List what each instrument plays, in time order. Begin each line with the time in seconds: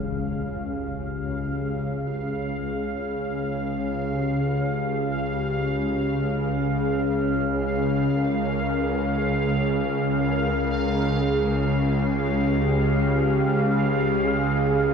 Already playing: synth drone C#2 C#3, synth texture F5
0.01 soft synth lead G4
2.06 soft synth lead F4
4.07 soft synth lead G4
5.09 soft synth lead G4
6.12 soft synth lead G#4
7.13 soft synth lead G#4
8.15 soft synth lead A#4
9.17 soft synth lead G#4
10.19 soft synth lead A#4
11.21 soft synth lead G#4
12.21 soft synth lead G4
14.25 soft synth lead G#4